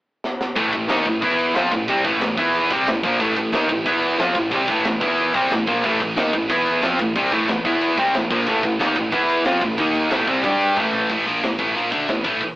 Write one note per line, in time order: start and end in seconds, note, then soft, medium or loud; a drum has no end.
0.24 snare medium
0.41 snare medium
0.56 0.72 A1 medium
0.56 0.72 A2 loud
0.56 0.72 E3 loud
0.56 0.73 A3 loud
0.56 kick loud
0.56 ride loud
0.73 0.88 A1 medium
0.73 0.86 A2 medium
0.73 0.86 E3 medium
0.73 kick medium
0.73 ride medium
0.88 1.05 D#2 medium
0.88 1.05 D#3 medium
0.88 1.05 A#3 loud
0.88 1.06 D#4 loud
0.88 snare loud
0.88 ride loud
1.05 1.21 A1 medium
1.05 1.19 A2 medium
1.05 1.19 E3 medium
1.05 kick medium
1.05 ride medium
1.22 1.53 E2 loud
1.22 1.55 E3 medium
1.22 1.56 B3 medium
1.22 1.56 E4 loud
1.22 kick loud
1.22 ride medium
1.38 ride medium
1.55 1.71 F2 loud
1.55 1.72 F3 medium
1.55 1.72 C4 medium
1.55 1.72 F4 loud
1.55 snare loud
1.55 ride medium
1.72 1.87 A1 medium
1.72 1.86 A2 medium
1.72 1.86 E3 medium
1.72 kick loud
1.72 ride medium
1.88 2.04 C2 medium
1.88 2.03 C3 loud
1.88 2.05 G3 loud
1.88 2.05 C4 loud
1.88 kick loud
1.88 ride loud
2.04 2.20 A1 loud
2.04 2.20 A2 medium
2.04 2.21 E3 medium
2.04 2.21 A3 medium
2.04 kick loud
2.04 ride medium
2.21 2.36 A1 medium
2.21 2.35 A2 medium
2.21 2.35 E3 medium
2.21 snare loud
2.21 ride loud
2.38 2.69 E2 loud
2.38 2.70 E3 medium
2.38 2.71 B3 loud
2.38 2.71 E4 medium
2.38 kick medium
2.38 ride medium
2.53 ride medium
2.70 2.86 C2 medium
2.70 2.87 C3 medium
2.70 2.87 G3 medium
2.70 2.87 C4 medium
2.70 kick loud
2.70 ride medium
2.87 3.03 A1 medium
2.87 3.01 A2 medium
2.87 3.01 E3 medium
2.87 snare loud
2.87 ride loud
3.03 3.19 A#1 medium
3.03 3.20 A#2 loud
3.03 3.21 F3 loud
3.03 3.21 A#3 loud
3.03 kick loud
3.03 ride medium
3.20 3.36 A1 medium
3.20 3.36 A2 loud
3.20 3.37 E3 loud
3.20 3.37 A3 loud
3.20 kick loud
3.20 ride medium
3.36 3.52 A1 medium
3.36 3.50 A2 medium
3.36 3.51 E3 medium
3.36 kick medium
3.36 ride medium
3.52 3.68 D#2 loud
3.52 3.69 D#3 loud
3.52 3.69 A#3 loud
3.52 3.69 D#4 loud
3.52 snare loud
3.52 ride loud
3.69 3.85 A1 medium
3.69 3.83 A2 medium
3.69 3.83 E3 medium
3.69 kick medium
3.69 ride medium
3.85 4.17 E2 loud
3.85 4.18 E3 loud
3.85 4.18 B3 loud
3.85 4.19 E4 loud
3.85 kick loud
3.85 ride loud
4.02 ride medium
4.18 4.35 F2 medium
4.18 4.35 F3 medium
4.18 4.35 C4 loud
4.18 4.35 F4 loud
4.18 snare loud
4.18 ride loud
4.35 4.51 A1 medium
4.35 4.49 A2 medium
4.35 4.49 E3 medium
4.35 kick loud
4.35 ride medium
4.51 4.67 C2 medium
4.51 4.68 C3 loud
4.51 4.68 G3 loud
4.51 4.68 C4 loud
4.51 kick loud
4.51 ride loud
4.68 4.84 A1 loud
4.68 4.84 A2 medium
4.68 4.84 E3 medium
4.68 4.85 A3 medium
4.68 kick loud
4.68 ride medium
4.84 5.01 A1 medium
4.84 5.01 A2 medium
4.84 4.98 E3 medium
4.84 snare loud
4.84 ride loud
5.01 5.32 E2 medium
5.01 5.34 E3 medium
5.01 5.34 B3 medium
5.01 5.34 E4 medium
5.01 kick loud
5.01 ride medium
5.18 ride medium
5.34 5.50 C2 medium
5.34 5.50 C3 medium
5.34 5.51 G3 loud
5.34 5.51 C4 medium
5.34 kick loud
5.34 ride medium
5.51 5.66 A1 medium
5.51 5.65 A2 medium
5.51 5.65 E3 medium
5.51 snare loud
5.51 ride medium
5.67 5.83 A#1 loud
5.67 5.83 A#2 loud
5.67 5.84 F3 medium
5.67 5.85 A#3 loud
5.67 kick loud
5.67 ride medium
5.84 5.99 A1 medium
5.84 5.99 A2 loud
5.84 5.99 E3 loud
5.84 6.01 A3 loud
5.84 kick loud
5.84 crash loud
6.00 6.16 A1 medium
6.00 6.13 A2 medium
6.00 6.14 E3 medium
6.00 kick medium
6.00 ride medium
6.16 6.32 D#2 medium
6.16 6.33 D#3 medium
6.16 6.33 A#3 loud
6.16 6.33 D#4 loud
6.16 snare loud
6.16 ride medium
6.33 6.49 A1 medium
6.33 6.47 A2 medium
6.33 6.47 E3 medium
6.33 kick medium
6.33 ride medium
6.50 6.80 E2 medium
6.50 6.82 E3 medium
6.50 6.83 B3 loud
6.50 6.83 E4 loud
6.50 kick loud
6.50 ride medium
6.66 ride medium
6.82 6.98 F2 medium
6.82 6.99 F3 medium
6.82 6.99 C4 medium
6.82 6.99 F4 medium
6.82 snare loud
6.82 ride loud
6.99 7.14 A1 medium
6.99 7.12 A2 medium
6.99 7.13 E3 medium
6.99 kick medium
6.99 ride medium
7.16 7.31 C2 medium
7.16 7.31 C3 loud
7.16 7.32 G3 medium
7.16 7.32 C4 loud
7.16 kick loud
7.16 ride loud
7.32 7.47 A1 loud
7.32 7.47 A2 medium
7.32 7.48 E3 medium
7.32 7.48 A3 medium
7.32 kick loud
7.32 ride medium
7.48 7.64 A1 medium
7.48 7.62 A2 medium
7.48 7.62 E3 medium
7.48 snare loud
7.48 ride loud
7.65 7.95 E2 loud
7.65 7.97 E3 medium
7.65 7.98 B3 medium
7.65 7.98 E4 medium
7.65 kick medium
7.65 ride medium
7.81 ride loud
7.97 8.13 C2 loud
7.97 8.13 C3 medium
7.97 8.14 G3 loud
7.97 8.14 C4 medium
7.97 kick loud
7.97 ride medium
8.14 8.29 A1 medium
8.14 8.27 A2 medium
8.14 8.28 E3 medium
8.14 snare loud
8.14 ride loud
8.31 8.46 A#1 loud
8.31 8.47 A#2 loud
8.31 8.47 F3 loud
8.31 8.47 A#3 loud
8.31 kick loud
8.31 ride medium
8.47 8.62 A1 medium
8.47 8.63 A2 loud
8.47 8.63 E3 loud
8.47 8.64 A3 loud
8.47 kick loud
8.47 ride medium
8.63 8.79 A1 medium
8.63 8.77 A2 medium
8.63 8.77 E3 medium
8.63 kick loud
8.63 ride medium
8.79 8.95 D#2 loud
8.79 8.95 D#3 loud
8.79 8.96 A#3 medium
8.79 8.96 D#4 loud
8.79 snare loud
8.79 ride medium
8.96 9.11 A1 medium
8.96 9.09 A2 medium
8.96 9.09 E3 medium
8.96 kick medium
8.96 ride medium
9.12 9.43 E2 loud
9.12 9.45 E3 loud
9.12 9.45 B3 medium
9.12 9.45 E4 loud
9.12 kick loud
9.12 ride medium
9.29 ride medium
9.45 9.61 F2 loud
9.45 9.61 F3 medium
9.45 9.62 C4 medium
9.45 9.62 F4 loud
9.45 snare loud
9.45 ride loud
9.61 9.77 A1 medium
9.61 9.75 A2 medium
9.61 9.75 E3 medium
9.61 kick loud
9.61 ride medium
9.78 10.09 D#2 medium
9.78 10.10 D#3 loud
9.78 10.11 A#3 loud
9.78 10.11 D#4 loud
9.78 kick loud
9.78 ride loud
9.95 ride medium
10.10 10.27 A1 medium
10.10 10.27 A2 medium
10.10 10.27 E3 loud
10.10 10.27 A3 loud
10.10 snare loud
10.10 ride loud
10.27 10.43 C2 medium
10.27 10.44 C3 medium
10.27 10.43 G3 medium
10.27 10.45 C4 medium
10.27 kick loud
10.27 ride medium
10.44 10.75 G2 medium
10.44 10.76 G3 loud
10.44 10.77 D4 medium
10.44 10.77 G4 loud
10.44 kick loud
10.44 ride loud
10.61 ride medium
10.77 11.07 A1 loud
10.77 11.08 A2 medium
10.77 11.09 E3 medium
10.77 11.10 A3 loud
10.77 kick medium
10.93 floor tom medium
11.10 11.25 A1 medium
11.10 11.25 A2 medium
11.10 11.26 E3 loud
11.10 11.26 A3 loud
11.10 kick medium
11.10 crash loud
11.25 11.42 A#1 medium
11.25 11.42 A#2 medium
11.25 11.42 F3 medium
11.25 11.42 A#3 medium
11.43 11.58 A1 medium
11.43 11.56 A2 medium
11.43 11.57 E3 medium
11.43 snare loud
11.43 open hi-hat medium
11.59 11.74 A1 medium
11.59 11.75 A2 medium
11.59 11.75 E3 medium
11.59 11.75 A3 medium
11.59 kick loud
11.75 11.91 A#1 medium
11.75 11.90 A#2 medium
11.75 11.91 F3 medium
11.75 11.92 A#3 loud
11.75 open hi-hat medium
11.91 12.07 D2 medium
11.91 12.07 D3 medium
11.91 12.08 A3 medium
11.91 12.08 D4 loud
11.91 kick loud
12.08 12.24 A1 medium
12.08 12.22 A2 medium
12.08 12.22 E3 medium
12.08 snare loud
12.08 open hi-hat medium
12.24 12.40 A1 medium
12.24 12.40 A2 medium
12.24 12.41 E3 loud
12.24 12.41 A3 medium
12.24 kick loud
12.41 kick loud
12.41 open hi-hat medium